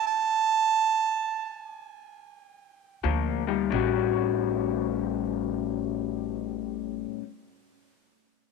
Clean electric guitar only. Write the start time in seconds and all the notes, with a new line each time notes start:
3.04 A#2 F3
3.47 A#2 G3
3.70 A2 G3 C#4 F#4